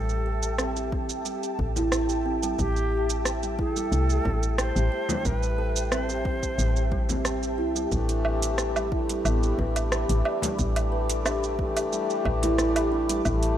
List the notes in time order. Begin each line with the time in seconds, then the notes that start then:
Already playing: A1 G4 A4 E5 G5 A5
0.09 G3, shaker
0.26 A4
0.43 shaker
0.58 C4, cross-stick, shaker
0.76 G4, shaker
0.92 C4, kick
1.09 shaker
1.25 G3, shaker
1.43 shaker
1.59 A1 A4, kick
1.76 E4, frame drum, shaker
1.92 cross-stick, shaker
2.09 shaker
2.26 C4
2.43 G3, shaker
2.58 A1 G3 G4, kick, shaker
2.76 shaker
3.10 shaker
3.25 cross-stick, shaker
3.43 G3, shaker
3.59 E4 G#4, kick
3.73 G3 A4, shaker
3.92 C2 A3, shaker
4.10 shaker
4.25 A1 A4, kick, frame drum
4.43 shaker
4.58 C5, cross-stick, shaker
4.76 A1, shaker
4.92 C5
5.09 G3, frame drum, shaker
5.25 A1 G3 B4, kick, shaker
5.43 G3, shaker
5.58 A4
5.76 shaker
5.92 C4 C5, cross-stick, shaker
6.09 G4, shaker
6.25 C4, kick
6.43 kick, shaker
6.58 A1 G3, shaker
6.76 shaker
6.92 G3, kick
7.09 C4, frame drum, shaker
7.25 C5, cross-stick, shaker
7.43 shaker
7.58 C2 E4
7.76 G3, shaker
7.89 A1 E3 G3 A3 D4 G4 B5 D6, kick, shaker
8.09 closed hi-hat, shaker
8.25 low woodblock
8.42 closed hi-hat, shaker
8.58 cross-stick, shaker
8.76 G3, low woodblock, shaker
8.90 E3 A3 D4 E4, kick
8.94 G4
9.09 G3, closed hi-hat, shaker
9.25 A1 B3, low woodblock, shaker
9.43 shaker
9.59 A1 B4, kick, frame drum
9.76 closed hi-hat, low woodblock, shaker
9.92 cross-stick, shaker
10.09 A1, closed hi-hat, shaker
10.25 D5, low woodblock
10.42 G3, closed hi-hat, frame drum, shaker
10.57 A1 E3 G3 A3 D4, kick, shaker
10.61 G4
10.76 G3, closed hi-hat, low woodblock, shaker
10.92 B4
11.10 closed hi-hat, shaker
11.25 D4, cross-stick, low woodblock, shaker
11.43 G4, shaker
11.57 E3 A3 D4 G4, kick
11.77 closed hi-hat, low woodblock, shaker
11.92 G3, shaker
12.10 shaker
12.25 A1 B4, kick, low woodblock
12.42 E4, closed hi-hat, frame drum, shaker
12.58 cross-stick, shaker
12.76 closed hi-hat, low woodblock, shaker
12.92 D4
13.09 G3, closed hi-hat, shaker
13.23 A1 E3 G3 A3 D4 G4, kick, low woodblock, shaker
13.43 closed hi-hat, shaker